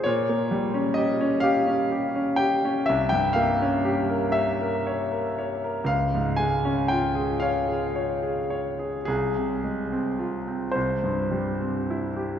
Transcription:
\new Staff \with { instrumentName = "Grand piano" } { \time 12/8 \key c \phrygian \tempo 4. = 39 << { des''4 ees''8 f''4 g''8 e''16 g''16 f''4 e''4. | f''8 aes''8 g''8 f''4. aes'4. c''4. | } \\ { bes,16 bes16 g16 des'16 g'16 des'16 g'16 des'16 g'16 des'16 g'16 des'16 c,16 g,16 bes16 des'16 g'16 bes'16 des''16 bes'16 des''16 bes'16 des''16 bes'16 | des,16 aes,16 aes16 des'16 f'16 aes'16 des''16 aes'16 des''16 aes'16 des''16 aes'16 c,16 c16 aes16 c'16 f'16 c'16 c,16 g,16 g16 c'16 e'16 g'16 | } >> }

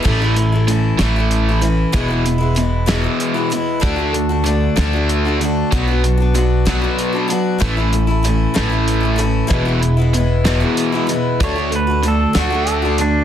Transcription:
<<
  \new Staff \with { instrumentName = "Pedal steel guitar" } { \time 6/8 \key a \major \tempo 4. = 63 r2. | r2. | r2. | r2. |
r2. | r2. | cis''8 b'8 a'8 fis'8 a'8 d'8 | }
  \new Staff \with { instrumentName = "Steel-string acoustic guitar" } { \time 6/8 \key a \major <a, e a cis' e'>16 <a cis' e'>8 <a cis' e'>16 <e a cis' e'>8 <a, e a cis' e'>16 <a cis' e'>8 <a cis' e'>16 <e a cis' e'>8 | <e, b, e gis b e'>16 <e gis b e'>8 <e gis b e'>16 <e gis b e'>8 <e, b, e gis b e'>16 <e gis b e'>8 <e gis b e'>16 <e gis b e'>8 | <d a d' fis'>16 <a d' fis'>8 <a d' fis'>16 <d a d' fis'>8 <d a d' fis'>16 <a d' fis'>8 <a d' fis'>16 <d a d' fis'>8 | <b, fis b d' fis'>16 <b d' fis'>8 <b d' fis'>16 <fis b d' fis'>8 <b, fis b d' fis'>16 <b d' fis'>8 <b d' fis'>16 <fis b d' fis'>8 |
<a, e a cis' e'>16 <a cis' e'>8 <a cis' e'>16 <e a cis' e'>8 <a, e a cis' e'>16 <a cis' e'>8 <a cis' e'>16 <e a cis' e'>8 | <e, b, e gis b e'>16 <e gis b e'>8 <e gis b e'>16 <e gis b e'>8 <e, b, e gis b e'>16 <e gis b e'>8 <e gis b e'>16 <e gis b e'>8 | <d a d' fis'>16 <a d' fis'>8 <a d' fis'>16 <d a d' fis'>8 <d a d' fis'>16 <a d' fis'>8 <a d' fis'>16 <d a d' fis'>8 | }
  \new Staff \with { instrumentName = "Overdriven electric guitar" } { \clef bass \time 6/8 \key a \major <a, e a>8 <a, e>8 <a, e>8 <a, e a>4 <a, e>8 | <e, b, e>8 <e, b,>8 <e, b,>8 <e, b, e>4 <e, b,>8 | <d a d'>8 <d a>8 <d a>8 <d a d'>4 <d a>8 | <b, fis b>8 <b, fis>8 <b, fis>8 <b, fis b>4 <b, fis>8 |
<a, e a>8 <a, e>8 <a, e>8 <a, e a>4 <a, e>8 | <e, b, e>8 <e, b,>8 <e, b,>8 <e, b, e>4 <e, b,>8 | <d a d'>8 <d a>8 <d a>8 <d a d'>4 <d a>8 | }
  \new Staff \with { instrumentName = "Upright bass" } { \clef bass \time 6/8 \key a \major a,,4. a,,4. | e,,2 r4 | d,4. d,4. | b,,2 r4 |
a,,4. a,,4. | e,,2 r4 | d,4. d,4. | }
  \new DrumStaff \with { instrumentName = "Drums" } \drummode { \time 6/8 <cymc bd>8 hh8 hh8 <hh sn>8 hh8 hh8 | <hh bd>8 hh8 hh8 <hh sn>8 hh8 hh8 | <hh bd>8 hh8 hh8 <hh sn>8 hh8 hh8 | <hh bd>8 hh8 hh8 <hh bd sn>8 hh8 hh8 |
<hh bd>8 hh8 hh8 <hh sn>8 hh8 hh8 | <hh bd>8 hh8 hh8 <hh sn>8 hh8 hh8 | <hh bd>8 hh8 hh8 <hh sn>8 hh8 hh8 | }
>>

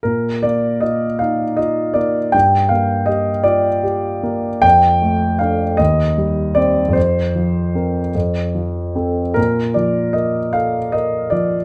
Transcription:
<<
  \new Staff \with { instrumentName = "Grand piano" } { \time 6/8 \key bes \major \tempo 4. = 51 bes'8 d''8 ees''8 f''8 ees''8 d''8 | g''8 f''8 ees''8 d''4. | g''4 f''8 ees''4 d''8 | c''4. r4. |
bes'8 d''8 ees''8 f''8 ees''8 d''8 | }
  \new Staff \with { instrumentName = "Grand piano" } { \time 6/8 \key bes \major bes,8 bes8 f'8 ees'8 f'8 bes8 | g,8 bes8 g'8 f'8 g'8 bes8 | f,8 a8 <d' a'>8 ees,8 g8 <c' c''>8 | f,8 f8 <c' bes'>8 f,8 f8 <c' a'>8 |
bes,8 f8 bes'8 a'8 bes'8 f8 | }
>>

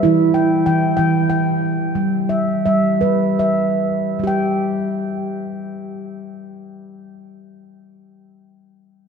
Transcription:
<<
  \new Staff \with { instrumentName = "Handpan" } { \time 6/8 \key e \minor \tempo 4. = 49 << { e''8 g''8 g''4 g''4~ | g''8 e''8 e''8 b'8 e''4~ | e''8 r2 r8 | r2. | } \\ { e'4 r8 g''4 r8 | g4 r2 | r2. | r2. | } >> }
  \new Staff \with { instrumentName = "Handpan" } { \clef bass \time 6/8 \key e \minor e4 e8 e4. | r4 g8 g4. | <g g' g''>2.~ | <g g' g''>2. | }
>>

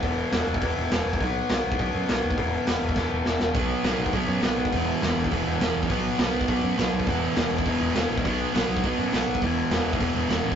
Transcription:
<<
  \new Staff \with { instrumentName = "Distorted electric guitar" } { \clef bass \time 4/4 \key e \major \tempo 4 = 204 r1 | r1 | r1 | <b, fis b>4 <b, fis b>4 <b, fis b>4 <b, fis b>4 |
<e, b, e>4 <e, b, e>4 <e, b, e>4 <e, b, e>4 | <b, fis b>4 <b, fis b>4 <b, fis b>4 <b, fis b>4 | <e, b, e>4 <e, b, e>4 <e, b, e>4 <e, b, e>4 | <b, fis b>4 <b, fis b>4 <b, fis b>4 <b, fis b>4 |
<e, b, e>4 <e, b, e>4 <e, b, e>4 <e, b, e>4 | }
  \new Staff \with { instrumentName = "Distorted electric guitar" } { \clef bass \time 4/4 \key e \major <e, b, e>4 <e, b, e>4 <e, b, e>4 <e, b, e>4 | <b, fis b>4 <b, fis b>4 <b, fis b>4 <b, fis b>4 | <e, b, e>4 <e, b, e>4 <e, b, e>4 <e, b, e>4 | <b, fis b>4 <b, fis b>4 <b, fis b>4 <b, fis b>4 |
<e, b, e>4 <e, b, e>4 <e, b, e>4 <e, b, e>4 | <b, fis b>4 <b, fis b>4 <b, fis b>4 <b, fis b>4 | <e, b, e>4 <e, b, e>4 <e, b, e>4 <e, b, e>4 | <b, fis b>4 <b, fis b>4 <b, fis b>4 <b, fis b>4 |
<e, b, e>4 <e, b, e>4 <e, b, e>4 <e, b, e>4 | }
  \new Staff \with { instrumentName = "Picked electric bass" } { \clef bass \time 4/4 \key e \major e,,4 e,,8 e,,8 e,,8 e,,8 e,,8 e,,8 | b,,4 b,,8 b,,8 b,,8 fis,8 b,,8 dis,8 | e,,4 e,,8 e,,8 e,,8 e,,8 e,,8 e,,8 | b,,4 b,,8 b,,8 b,,8 fis,8 b,,8 b,,8 |
e,,4 e,,8 e,,8 e,,8 e,,8 e,,8 e,,8 | b,,4 b,,8 b,,8 b,,8 fis,8 b,,8 b,,8 | e,,4 e,,8 e,,8 e,,8 e,,8 e,,8 ais,,8 | b,,4 b,,8 b,,8 b,,8 fis,8 b,,8 b,,8 |
e,,4 e,,8 e,,8 e,,8 e,,8 e,,8 a,,8 | }
  \new DrumStaff \with { instrumentName = "Drums" } \drummode { \time 4/4 <hho bd>4 <hho sn>8. bd16 <hho bd>4 <hho sn>8. bd16 | <hho bd>4 <hho sn>8. bd16 <hho bd>4 <hho sn>8. bd16 | <hho bd>4 <hho sn>8. bd16 <bd sn>4 sn8 sn8 | <hho bd>4 <hho sn>8. bd16 <hho bd>4 <hho sn>8. bd16 |
<hho bd>4 <hho sn>8. bd16 <hho bd>4 <hho sn>8. bd16 | <hho bd>4 <hho sn>8. bd16 <hho bd>4 <hho sn>8. bd16 | <hho bd>4 <hho sn>8. bd16 <hho bd>4 <hho sn>8. bd16 | <hho bd>4 <hho sn>8. bd16 <hho bd>4 <hho sn>8. bd16 |
<hho bd>4 <hho sn>8. bd16 <hho bd>4 <hho sn>8. bd16 | }
>>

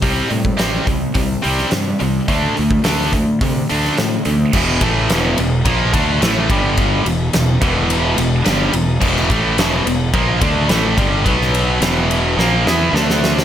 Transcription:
<<
  \new Staff \with { instrumentName = "Distorted electric guitar" } { \clef bass \time 4/4 \key e \minor \tempo 4 = 107 <c g c'>8 <c g>8 <c g c'>8 <c g>8 <c g>8 <c g c'>8 <c g>8 <c g>8 | <d a d'>8 <d a>8 <d a d'>8 <d a>8 <d a>8 <d a d'>8 <d a>8 <d a>8 | <e, b, e>8 <a, e a>8 <e, b, e>8 <e, b,>8 <ais, f ais>8 <d a d'>8 <a, e a>8 <g, d g>8~ | <g, d g>8 <e, b,>8 <e, b,>8 <e, b, e>4 <e, b,>8 <g, d g>8 <e, b,>8 |
<e, b, e>8 <a, e a>8 <e, b, e>8 <e, b,>8 <ais, f ais>8 <d a d'>8 <a, e a>8 <g, d g>8 | <b, fis b>4 <e, b, e>4 <ais, f ais>8 <e b e'>8 <d a d'>4 | }
  \new Staff \with { instrumentName = "Fingered electric bass" } { \clef bass \time 4/4 \key e \minor c,8 a,8 a,,8 c,8 c,8 c,8 g,8 c,8 | d,8 d,8 d,4 c8 d,8 a,8 d,8 | e,,8 a,,8 e,,8 e,,8 ais,,8 d,8 a,,8 g,,8~ | g,,8 e,,8 e,,8 e,,4 e,,8 g,,8 e,,8 |
e,,8 a,,8 e,,8 e,,8 ais,,8 d,8 a,,8 g,,8 | b,,4 e,,4 ais,,8 e,8 d,4 | }
  \new DrumStaff \with { instrumentName = "Drums" } \drummode { \time 4/4 <hho bd>8 hho16 bd16 <hho sn>8 <hho bd>8 <hho bd>8 hho16 sn16 <hho sn>8 hho8 | <hho bd>8 hho16 bd16 <hho sn>8 <hho bd>8 <hho bd>8 hho16 sn16 <hho sn>8 hho8 | <cymc bd>8 <bd cymr>8 <cymr sn>8 cymr8 <bd cymr>8 <bd cymr>8 <cymr sn>8 <bd cymr>8 | <bd cymr>8 cymr8 <cymr sn>8 <bd cymr>8 cymr8 cymr8 <cymr sn>8 cymr8 |
<cymc bd>16 sn16 <bd cymr>8 <cymr sn>8 cymr8 <bd cymr>8 <bd cymr>8 <cymr sn>8 <bd cymr>8 | <bd cymr>16 sn16 cymr8 <cymr sn>8 cymr8 sn8 sn8 sn16 sn16 sn16 sn16 | }
>>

